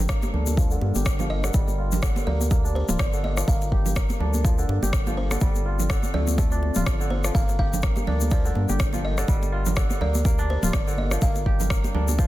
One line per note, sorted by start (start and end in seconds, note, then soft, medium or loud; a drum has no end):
0.00 0.17 G1 loud
0.00 1.52 G3 medium
0.00 0.33 D4 loud
0.00 1.52 D4 medium
0.00 0.53 F4 medium
0.00 0.95 G4 medium
0.00 1.52 A4 medium
0.00 3.44 A#4 medium
0.00 0.78 C5 medium
0.09 2.02 A#3 medium
0.09 kick loud
0.09 cross-stick loud
0.09 shaker medium
0.22 muted conga soft
0.22 high conga loud
0.22 shaker soft
0.33 0.78 D2 medium
0.33 2.01 D4 medium
0.33 low conga loud
0.47 high conga loud
0.47 shaker medium
0.57 0.75 F3 medium
0.57 kick loud
0.57 muted conga soft
0.57 shaker medium
0.71 1.42 D3 medium
0.71 shaker soft
0.81 0.92 G2 loud
0.81 muted conga soft
0.81 high conga medium
0.95 1.50 G1 medium
0.95 2.36 G4 medium
0.95 high conga medium
0.95 shaker medium
1.05 kick loud
1.05 cross-stick loud
1.05 shaker medium
1.19 1.47 F3 medium
1.19 high conga medium
1.19 low conga loud
1.19 shaker soft
1.30 2.30 D#5 loud
1.44 1.59 D3 loud
1.44 cross-stick medium
1.44 muted conga medium
1.44 high conga medium
1.44 shaker medium
1.54 2.11 G1 loud
1.54 2.08 G3 loud
1.54 3.46 G4 medium
1.54 kick loud
1.54 shaker medium
1.68 muted conga soft
1.68 shaker soft
1.78 2.88 F4 medium
1.92 muted conga soft
1.92 low conga loud
1.92 shaker medium
2.02 3.12 D3 loud
2.02 kick loud
2.02 cross-stick loud
2.02 shaker medium
2.16 muted conga soft
2.16 high conga loud
2.16 shaker soft
2.27 2.83 D2 medium
2.27 2.50 A#3 medium
2.27 2.77 D5 loud
2.27 low conga loud
2.41 high conga medium
2.41 shaker medium
2.51 3.47 A#3 medium
2.51 kick loud
2.51 muted conga soft
2.51 high conga loud
2.51 shaker medium
2.64 4.20 D4 loud
2.64 shaker soft
2.75 3.00 C5 medium
2.75 muted conga medium
2.88 2.97 D1 loud
2.88 4.40 F4 medium
2.88 mid tom medium
2.88 high conga loud
2.88 shaker medium
2.99 3.44 G1 medium
2.99 3.24 D5 medium
2.99 kick loud
2.99 cross-stick loud
2.99 muted conga soft
2.99 low conga medium
2.99 shaker medium
3.13 3.53 D3 medium
3.13 shaker soft
3.24 3.49 D#5 loud
3.24 high conga medium
3.37 3.53 F3 medium
3.37 cross-stick medium
3.37 muted conga medium
3.37 shaker medium
3.48 4.04 G1 loud
3.48 5.40 G3 medium
3.48 3.95 A#3 medium
3.48 5.40 D4 medium
3.48 9.25 A4 medium
3.48 5.40 A#4 medium
3.48 3.93 F5 loud
3.48 kick loud
3.48 shaker medium
3.61 muted conga soft
3.61 shaker soft
3.72 4.82 G4 medium
3.72 kick medium
3.86 muted conga soft
3.86 low conga loud
3.86 shaker medium
3.96 5.89 A#3 medium
3.96 kick loud
3.96 cross-stick loud
3.96 shaker medium
4.10 muted conga soft
4.10 high conga loud
4.10 shaker soft
4.20 4.65 D2 medium
4.20 5.88 D4 medium
4.20 low conga loud
4.34 high conga medium
4.34 shaker medium
4.44 4.62 F3 medium
4.44 kick loud
4.44 muted conga soft
4.44 shaker medium
4.58 5.30 D3 medium
4.58 shaker soft
4.69 4.79 G2 loud
4.69 muted conga medium
4.69 high conga medium
4.82 5.37 G1 medium
4.82 6.24 G4 medium
4.82 high conga loud
4.82 shaker medium
4.93 kick loud
4.93 cross-stick loud
4.93 muted conga soft
4.93 shaker medium
5.07 5.34 F3 medium
5.07 high conga loud
5.07 low conga medium
5.07 shaker soft
5.17 6.17 C5 medium
5.31 5.46 D3 medium
5.31 cross-stick medium
5.31 muted conga medium
5.31 high conga medium
5.31 shaker medium
5.40 5.98 G1 loud
5.40 5.95 G3 loud
5.40 7.33 C4 medium
5.40 7.33 F4 medium
5.40 kick loud
5.40 shaker medium
5.55 muted conga soft
5.55 shaker soft
5.66 6.76 F4 medium
5.79 muted conga soft
5.79 low conga medium
5.79 shaker medium
5.90 6.99 D3 loud
5.90 kick loud
5.90 cross-stick loud
5.90 shaker medium
6.03 muted conga soft
6.03 high conga medium
6.03 shaker soft
6.14 6.71 D2 medium
6.14 6.38 A3 medium
6.14 7.14 D5 loud
6.14 low conga loud
6.27 high conga medium
6.27 shaker medium
6.38 7.41 A3 medium
6.38 kick loud
6.38 muted conga soft
6.38 high conga loud
6.38 shaker medium
6.51 8.07 D4 loud
6.51 shaker soft
6.63 muted conga soft
6.75 6.84 D1 medium
6.75 8.27 F4 medium
6.75 mid tom medium
6.75 high conga medium
6.75 shaker medium
6.86 7.31 G1 medium
6.86 kick loud
6.86 cross-stick loud
6.86 muted conga soft
6.86 low conga medium
6.86 shaker medium
7.00 7.40 D3 medium
7.00 shaker soft
7.10 7.36 C5 medium
7.10 high conga medium
7.24 7.40 F3 medium
7.24 cross-stick medium
7.24 muted conga soft
7.24 shaker medium
7.35 7.91 G1 loud
7.35 9.26 G3 medium
7.35 7.83 A#3 medium
7.35 9.27 D4 medium
7.35 9.26 A#4 medium
7.35 7.58 F5 loud
7.35 kick loud
7.35 shaker medium
7.49 muted conga soft
7.49 shaker soft
7.59 8.69 G4 medium
7.59 8.09 F5 loud
7.59 kick medium
7.73 muted conga soft
7.73 low conga loud
7.73 shaker medium
7.82 9.76 A#3 medium
7.82 kick loud
7.82 cross-stick loud
7.82 shaker medium
7.96 muted conga medium
7.96 high conga loud
7.96 shaker soft
8.07 8.52 D2 medium
8.07 9.75 D4 medium
8.07 8.30 D5 medium
8.07 low conga loud
8.21 high conga medium
8.21 shaker medium
8.31 8.49 F3 medium
8.31 9.06 D5 loud
8.31 kick loud
8.31 muted conga soft
8.31 shaker medium
8.45 9.17 D3 medium
8.45 shaker soft
8.55 8.66 G2 loud
8.55 muted conga medium
8.55 high conga medium
8.69 9.24 G1 medium
8.69 10.10 G4 medium
8.69 high conga medium
8.69 shaker medium
8.79 kick loud
8.79 cross-stick loud
8.79 muted conga soft
8.79 shaker medium
8.93 9.21 F3 medium
8.93 high conga medium
8.93 low conga medium
8.93 shaker soft
9.05 10.04 D#5 loud
9.18 9.33 D3 loud
9.18 cross-stick medium
9.18 muted conga soft
9.18 high conga medium
9.18 shaker medium
9.28 9.85 G1 loud
9.28 9.82 G3 loud
9.28 11.20 G4 medium
9.28 12.27 A#4 medium
9.28 kick loud
9.28 shaker medium
9.42 muted conga soft
9.42 shaker soft
9.52 10.63 F4 medium
9.66 muted conga soft
9.66 low conga loud
9.66 shaker medium
9.76 10.86 D3 loud
9.76 kick loud
9.76 cross-stick loud
9.76 shaker medium
9.90 muted conga medium
9.90 high conga loud
9.90 shaker soft
10.01 10.58 D2 medium
10.01 10.25 A#3 medium
10.01 10.51 D5 medium
10.01 low conga loud
10.15 high conga medium
10.15 shaker medium
10.25 11.22 A#3 medium
10.25 kick loud
10.25 muted conga soft
10.25 high conga loud
10.25 shaker medium
10.38 11.94 D4 loud
10.38 shaker soft
10.50 10.72 C5 medium
10.50 muted conga soft
10.63 10.71 D1 loud
10.63 12.14 F4 medium
10.63 mid tom loud
10.63 high conga medium
10.63 shaker medium
10.73 11.18 G1 medium
10.73 10.99 D5 medium
10.73 kick loud
10.73 cross-stick loud
10.73 muted conga soft
10.73 low conga medium
10.73 shaker medium
10.87 11.27 D3 medium
10.87 shaker soft
10.98 11.09 D#5 medium
10.98 high conga medium
11.11 11.27 F3 medium
11.11 cross-stick medium
11.11 muted conga medium
11.11 shaker medium
11.22 11.79 G1 loud
11.22 12.27 G3 medium
11.22 11.70 A#3 medium
11.22 12.27 D4 medium
11.22 12.27 A4 medium
11.22 11.67 F5 medium
11.22 kick loud
11.22 shaker medium
11.35 muted conga medium
11.35 shaker soft
11.46 12.27 G4 medium
11.46 kick medium
11.60 muted conga soft
11.60 low conga loud
11.60 shaker medium
11.70 12.27 A#3 medium
11.70 kick loud
11.70 cross-stick loud
11.70 shaker medium
11.84 muted conga medium
11.84 high conga medium
11.84 shaker soft
11.94 12.27 D2 medium
11.94 12.27 D4 medium
11.94 low conga loud
12.08 high conga medium
12.08 shaker medium
12.18 12.27 F3 medium
12.18 kick loud
12.18 muted conga soft
12.18 shaker medium